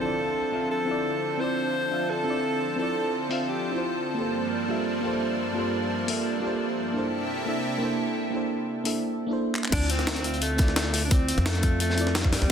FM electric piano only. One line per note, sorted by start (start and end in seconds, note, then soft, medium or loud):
0.00 0.52 C4 medium
0.00 0.87 E4 medium
0.00 0.03 F4 medium
0.00 0.52 F4 medium
0.00 0.05 D5 medium
0.00 0.53 E5 medium
0.00 0.55 F5 medium
0.05 0.53 D5 medium
0.52 0.84 C4 medium
0.52 0.87 F4 medium
0.52 0.86 E5 medium
0.52 0.87 F5 medium
0.85 1.36 C4 medium
0.85 1.38 E4 medium
0.89 1.39 F4 medium
0.89 1.40 D5 loud
1.37 1.89 C4 medium
1.37 1.90 E4 medium
1.41 1.91 F4 medium
1.41 1.92 D5 medium
1.91 2.23 C4 medium
1.91 2.25 F4 medium
1.91 2.25 E5 medium
1.91 2.26 F5 medium
2.24 2.74 C4 medium
2.24 2.76 E4 medium
2.28 2.78 F4 medium
2.28 2.79 D5 loud
2.76 3.27 C4 medium
2.76 3.28 E4 medium
2.80 3.29 F4 medium
2.80 3.31 D5 medium
3.29 3.63 C4 medium
3.29 3.64 F4 medium
3.29 3.63 E5 medium
3.29 3.64 F5 medium
3.72 4.14 C4 medium
3.72 4.15 E4 medium
3.76 4.15 F4 medium
3.76 4.17 C5 medium
4.14 4.66 A#3 medium
4.14 4.67 F4 medium
4.14 4.68 G4 medium
4.19 4.68 A4 medium
4.19 4.69 C5 medium
4.68 5.00 A#3 medium
4.68 5.01 F4 medium
4.68 5.02 G4 medium
4.68 5.03 A4 medium
4.68 5.03 E5 medium
5.01 5.52 A#3 medium
5.01 5.53 F4 medium
5.01 5.54 G4 medium
5.06 5.55 A4 medium
5.06 5.56 C5 medium
5.53 6.05 A#3 medium
5.53 6.05 F4 medium
5.53 6.06 G4 medium
5.58 6.07 A4 medium
5.58 6.08 C5 medium
6.07 6.39 A#3 medium
6.07 6.40 F4 medium
6.07 6.41 G4 medium
6.07 6.42 A4 medium
6.07 6.42 E5 medium
6.40 6.91 A#3 medium
6.40 6.92 F4 medium
6.40 6.93 G4 medium
6.45 6.94 A4 medium
6.45 6.95 C5 loud
6.92 7.43 A#3 medium
6.92 7.44 D4 medium
6.92 7.45 E4 medium
6.97 7.46 A4 medium
6.97 7.47 C5 medium
7.46 7.77 A#3 medium
7.46 7.79 D4 medium
7.46 7.80 E4 medium
7.46 7.80 A4 medium
7.46 7.81 E5 medium
7.78 8.29 A#3 medium
7.78 8.31 D4 medium
7.78 8.32 E4 medium
7.83 8.32 A4 medium
7.83 8.33 C5 loud
8.30 8.82 A#3 medium
8.30 8.83 D4 medium
8.30 8.84 E4 medium
8.35 8.84 A4 medium
8.35 8.85 C5 medium
8.84 9.18 A#3 medium
8.84 9.18 D4 medium
8.84 9.18 E4 medium
8.84 9.19 A4 medium
8.84 9.19 E5 medium
9.27 9.69 A#3 medium
9.27 9.70 D4 medium
9.27 9.70 E4 medium
9.31 9.71 A4 medium
9.31 9.72 C5 medium
9.69 10.21 C4 medium
9.69 10.22 E4 medium
9.76 10.24 D5 medium
10.23 10.55 C4 medium
10.23 10.58 F4 medium
10.23 10.57 E5 medium
10.23 10.58 F5 medium
10.56 11.07 C4 medium
10.56 11.09 E4 medium
10.60 11.10 F4 medium
10.60 11.11 D5 loud
11.08 11.60 C4 medium
11.08 11.61 E4 medium
11.12 11.62 F4 medium
11.12 11.63 D5 medium
11.61 11.94 C4 medium
11.61 11.96 F4 medium
11.61 11.96 E5 medium
11.61 11.97 F5 medium
11.95 12.45 C4 medium
11.95 12.47 E4 medium
11.99 12.48 F4 medium
11.99 12.50 D5 loud
12.47 12.52 C4 medium
12.47 12.52 E4 medium